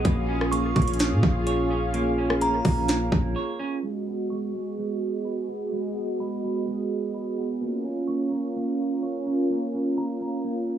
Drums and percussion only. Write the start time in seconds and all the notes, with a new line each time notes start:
0.05 kick, closed hi-hat
0.41 cross-stick
0.52 closed hi-hat
0.76 kick, closed hi-hat
0.82 closed hi-hat
0.88 closed hi-hat
0.94 closed hi-hat
0.99 snare, closed hi-hat
1.23 kick
1.47 closed hi-hat
1.94 closed hi-hat
2.30 cross-stick
2.41 closed hi-hat
2.65 kick, open hi-hat
2.88 snare, closed hi-hat
3.12 kick